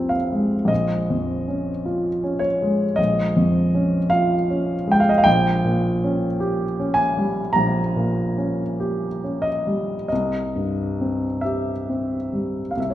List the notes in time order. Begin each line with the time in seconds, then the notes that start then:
Already playing: F1 C2 C4 F4 G#5
0.09 F5
0.32 G#3
0.65 A#1 D#5
1.10 F2
1.48 C#4
1.86 F4
2.24 C#4
2.39 C#5
2.62 G#3
2.96 A#1 D#5
3.36 F2
3.74 C#4
4.10 F4 F5
4.50 C#4
4.87 G#3
4.92 G5
5.00 F5
5.09 D#5
5.18 F5
5.24 A#1 G5
5.65 A#2
6.04 C#4
6.40 G4
6.79 C#4
6.94 G#5
7.17 G3
7.53 A#1 A#5
7.96 A#2
8.38 C#4
8.80 G4
9.24 C#4
9.42 D#5
9.67 G3
10.08 C2 D#5
10.56 G2
11.01 C4
11.41 G4 E5
11.89 C4
12.33 G3
12.71 F5
12.77 C2 E5
12.90 C#5